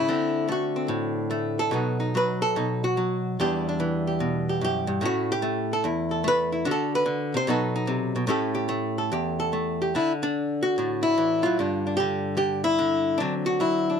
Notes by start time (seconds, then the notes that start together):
Already playing: E4
0.09 D3 A3 C4
0.48 A3 F#4
0.76 C4
0.88 A2
1.31 A3
1.59 A4
1.71 B2 F#3 B3 D#4
2.00 D#4
2.15 F#3 B4
2.42 A4
2.56 B2 D#4
2.84 F#4
2.97 F#3
3.40 E2 E3 G3 D4 G4
3.69 D4
3.80 E3
4.07 G4
4.20 B2
4.49 G4
4.61 F#2 G4
4.87 G2
5.01 A2 A3 C#4
5.05 F#4
5.32 G4
5.42 A3
5.73 A4
5.84 E2 E4
6.11 A4
6.24 A3 B4
6.52 E4
6.65 D3 D4 F#4
6.71 A4
6.95 B4
7.06 D3
7.34 C3 C5
7.47 B2 F#3 B3 D#4 A4
7.76 D#4
7.87 C3
8.16 B2
8.27 A2 A3 C#4 G4 A4
8.55 G4
8.69 A3
8.98 A4
9.12 E2 G4
9.40 A4
9.53 A3
9.82 G4
9.95 D3 D4 E4
10.23 D4
10.63 F#4
10.78 A2 D4
11.03 E4
11.18 E3
11.43 F#3 F4
11.59 G2 D3 D4
11.87 D4
11.97 D3 G4
12.37 D3 G4
12.64 E4
12.79 D3
13.18 D3 F#3 C4 D4
13.46 F#4
13.60 F#3 E4
13.90 D4